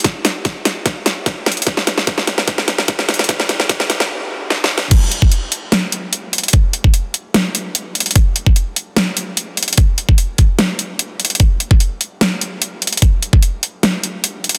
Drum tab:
CC |------------------------------------------------------------------------------------------------|------------------------------------------------------------------------------------------------|------------------------------------------------------------------------------------------------|x-----------------------------------------------------------------------------------------------|
HH |x-----------x-----------x-----------x-----------x-----------x-----------x-----------x--x--x--x--|x-----------x-----------x-----------x-----------x-----------x-----------x-----------x--x--x--x--|x-----------x-----------x-----------x-----------------------------------------------------------|x-----------x-----------x-----------x-----------x-----------x-----------x-----------x--x--x--x--|
SD |o-----------o-----------o-----------o-----------o-----------o-----------o-----------o-----------|o-----o-----o-----o-----o-----o-----o-----o-----o-----o-----o-----o-----o-----o-----o-----o-----|o-----o-----o-----o-----o-----o-----o-----o-----------------------------o-------o-------o-------|------------------------------------------------o-----------------------------------------------|
BD |o-----------------------o-----------------------o-----------------------o-----------------------|o-----------------------o-----------------------o-----------------------o-----------------------|o-----------------------o-----------------------------------------------------------------------|o-----------------o-----------------------------------------------------------------------------|

CC |------------------------------------------------------------------------------------------------|------------------------------------------------------------------------------------------------|------------------------------------------------------------------------------------------------|------------------------------------------------------------------------------------------------|
HH |x-----------x-----------x-----------x-----------x-----------x-----------x-----------x--x--x--x--|x-----------x-----------x-----------x-----------x-----------x-----------x-----------x--x--x--x--|x-----------x-----------x-----------x-----------x-----------x-----------x-----------x--x--x--x--|x-----------x-----------x-----------x-----------x-----------x-----------x-----------x--x--x--x--|
SD |------------------------------------------------o-----------------------------------------------|------------------------------------------------o-----------------------------------------------|------------------------------------------------o-----------------------------------------------|------------------------------------------------o-----------------------------------------------|
BD |o-----------------o-----------------------------------------------------------------------------|o-----------------o-----------------------------------------------------------------------------|o-----------------o-----------------o-----------------------------------------------------------|o-----------------o-----------------------------------------------------------------------------|

CC |------------------------------------------------------------------------------------------------|
HH |x-----------x-----------x-----------x-----------x-----------x-----------x-----------x--x--x-----|
SD |------------------------------------------------o-----------------------------------------------|
BD |o-----------------o-----------------------------------------------------------------------------|